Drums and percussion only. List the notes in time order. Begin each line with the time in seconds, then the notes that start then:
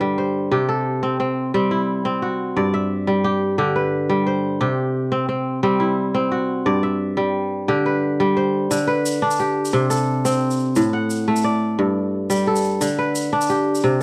8.71 shaker
9.06 shaker
9.31 shaker
9.39 shaker
9.65 shaker
9.90 shaker
10.25 shaker
10.51 shaker
10.59 shaker
10.76 shaker
11.10 shaker
11.36 shaker
12.30 shaker
12.56 shaker
12.64 shaker
12.81 shaker
13.15 shaker
13.41 shaker
13.50 shaker
13.75 shaker